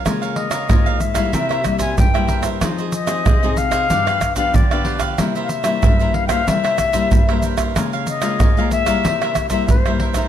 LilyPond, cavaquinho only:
\new Staff \with { instrumentName = "Cavaquinho" } { \time 4/4 \key c \phrygian \tempo 4 = 93 <f' bes' des'' f''>16 <bes' des'' f''>8 <bes' des'' f''>16 <f' bes' des'' f''>16 <bes' des'' f''>16 r16 <bes' des'' f''>16 <e' bes' c'' e''>16 <bes' c'' e''>16 r16 <bes' c'' e''>8 <bes' c'' e''>16 <e' bes' c'' e''>16 <bes' c'' e''>16 | <f' aes' c'' ees''>16 <aes' c'' ees''>8 <aes' c'' ees''>16 <f' aes' c'' ees''>16 <aes' c'' ees''>16 r16 <aes' c'' ees''>16 <d' g' b' f''>16 <g' b' f''>16 r16 <g' b' f''>8 <g' b' f''>16 <d' g' b' f''>16 <g' b' f''>16 | <e' bes' c'' e''>16 <bes' c'' e''>8 <bes' c'' e''>16 <e' bes' c'' e''>16 <bes' c'' e''>16 r16 <bes' c'' e''>16 <e' bes' c'' e''>16 <bes' c'' e''>16 r16 <bes' c'' e''>8 <bes' c'' e''>16 <e' bes' c'' e''>16 <bes' c'' e''>16 | <f' bes' des'' f''>16 <bes' des'' f''>8 <bes' des'' f''>16 <f' bes' des'' f''>16 <bes' des'' f''>16 r16 <bes' des'' f''>16 <e' bes' c'' e''>16 <bes' c'' e''>16 r16 <bes' c'' e''>8 <bes' c'' e''>16 <e' bes' c'' e''>16 <bes' c'' e''>16 | }